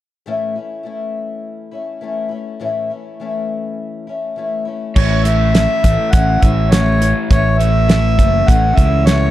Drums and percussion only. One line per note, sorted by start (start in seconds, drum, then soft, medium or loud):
4.96 kick medium
4.96 crash medium
5.25 closed hi-hat medium
5.55 snare medium
5.55 closed hi-hat medium
5.84 kick medium
5.84 closed hi-hat medium
6.13 kick loud
6.13 closed hi-hat medium
6.42 kick medium
6.42 closed hi-hat medium
6.72 snare loud
6.72 closed hi-hat medium
7.02 closed hi-hat medium
7.31 kick medium
7.31 closed hi-hat medium
7.60 closed hi-hat soft
7.89 snare medium
7.89 closed hi-hat medium
8.19 kick medium
8.19 closed hi-hat soft
8.48 kick medium
8.48 closed hi-hat medium
8.78 kick medium
8.78 closed hi-hat soft
9.07 snare loud
9.07 closed hi-hat medium